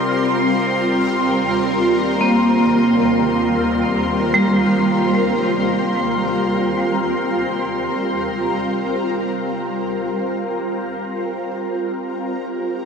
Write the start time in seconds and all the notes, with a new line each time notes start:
Already playing: C3 G3 C4 F4 A#4 C6
0.08 D#2
2.21 A#3
4.34 G3